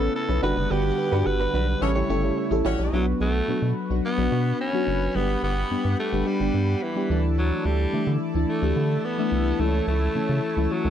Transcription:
Already playing: analog synth pad C#3 A3 B3 E4, fm electric piano C#4 E4 A4 B4, alto saxophone A4
0.01 muted clean electric guitar stroke
0.15 alto saxophone A4, muted clean electric guitar stroke
0.29 analog synth bass B1, fm electric piano C#4 E4 A4 B4, muted clean electric guitar stroke
0.42 analog synth bass G1, analog synth pad D3 G3 F#5, fm electric piano D4 F#4 G4 B4, clean electric guitar D4 F#4 B4, alto saxophone B4
0.56 analog synth bass F#1, clean electric guitar D4 F#4 B4
0.70 analog synth bass G1, clean electric guitar D4 F#4 B4, alto saxophone G4
0.98 muted clean electric guitar stroke
1.12 analog synth bass G2, fm electric piano D4 F#4 G4 B4, clean electric guitar D4 F#4 B4
1.26 analog synth bass G1, alto saxophone B4, muted clean electric guitar stroke
1.40 clean electric guitar D4 F#4 B4
1.54 analog synth bass B1, clean electric guitar D4 F#4 B4
1.68 muted clean electric guitar stroke
1.81 analog synth bass A1, analog synth pad C#3 A3 E4, fm electric piano C#4 E4 G4 A4, horn section C#4 G4 A4 C#5, alto saxophone C#5, muted clean electric guitar stroke
1.96 clean electric guitar E4 G4 C#5
2.09 analog synth bass G1, fm electric piano C#4 E4 G4 A4, clean electric guitar E4 G4 C#5
2.23 muted clean electric guitar stroke
2.37 muted clean electric guitar stroke
2.51 analog synth bass A1, fm electric piano C#4 E4 G4 A4, muted clean electric guitar stroke
2.65 analog synth bass A1, horn section C#4 D4 F#4 C#5, clean electric guitar E4 G4 C#5
2.79 analog synth bass A#1, clean electric guitar E4 G4 C#5
2.93 analog synth bass B1, fm electric piano F#3 B3 D4 F#4, alto saxophone F#3, analog synth pad F#4 B4 F#5 B5
3.20 analog synth bass B1, alto saxophone A3
3.48 analog synth bass B2, fm electric piano F#3 B3 D4 F#4
3.62 analog synth bass B2
3.90 analog synth bass B1, fm electric piano F#3 B3 D4 F#4
4.05 alto saxophone B3
4.18 analog synth bass B1, fm electric piano F#3 B3 D4 F#4
4.32 analog synth bass B2
4.61 alto saxophone C#4
4.73 fm electric piano F#3 B3 D4 F#4
4.87 analog synth bass F#1
5.15 analog synth bass G1, fm electric piano G3 B3 D4 G4, alto saxophone B3, analog synth pad G4
5.43 analog synth bass G1, alto saxophone B3
5.70 analog synth bass G2, fm electric piano G3 B3 D4 G4
5.85 analog synth bass G2
5.99 alto saxophone A3
6.12 analog synth bass G1, fm electric piano G3 B3 D4 G4
6.27 alto saxophone G3
6.40 analog synth bass G1, fm electric piano G3 B3 D4 G4
6.54 analog synth bass G2
6.83 alto saxophone E3
6.96 fm electric piano G3 B3 D4 G4
7.10 analog synth bass D2, fm electric piano E3 A3 D4 E4, analog synth pad E4 A4 D5 A5
7.38 alto saxophone F#3
7.65 analog synth bass D2, alto saxophone G3
7.93 analog synth bass D3, fm electric piano E3 A3 D4 E4
8.07 analog synth bass D3
8.34 analog synth bass D2, fm electric piano E3 A3 D4 E4
8.49 alto saxophone A3
8.62 analog synth bass D2, fm electric piano E3 A3 D4 G4
8.76 analog synth bass D3
9.05 alto saxophone B3
9.18 fm electric piano E3 A3 D4 E4
9.32 analog synth bass C2
9.59 analog synth bass C#2, fm electric piano E3 A3 C#4 E4, alto saxophone A3, analog synth pad C#5
9.87 analog synth bass C#2, alto saxophone A3
10.15 analog synth bass C#3, fm electric piano E3 A3 C#4 E4
10.29 analog synth bass C#3
10.56 analog synth bass C#2, fm electric piano E3 A3 C#4 E4
10.71 alto saxophone F#3
10.85 analog synth bass C#2, fm electric piano E3 A3 C#4 E4

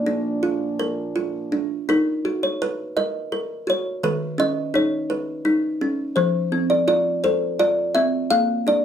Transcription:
Already playing: french horn section A#2 F3 D4, kalimba A#3 D5
0.06 kalimba D4
0.43 kalimba F4
0.79 kalimba A#4
1.16 kalimba F4
1.52 kalimba D4
1.89 kalimba D#4 A#4
2.25 kalimba F#4
2.43 kalimba C#5
2.62 kalimba B4
2.97 kalimba A#4 D#5
3.32 kalimba A#4
3.67 kalimba F#4 C#5
4.03 kalimba D#3 B4
4.38 kalimba C#4 D#5
4.74 kalimba D#4 C#5
5.10 kalimba B4
5.45 kalimba D#4
5.81 kalimba C#4
6.16 kalimba F3 C5
6.52 kalimba C4
6.70 kalimba D5
6.88 kalimba F4 D5
7.24 kalimba A4 C5
7.59 kalimba F4 D5
7.95 kalimba C4 E5
8.30 kalimba A#3 F5
8.67 kalimba D4 D5

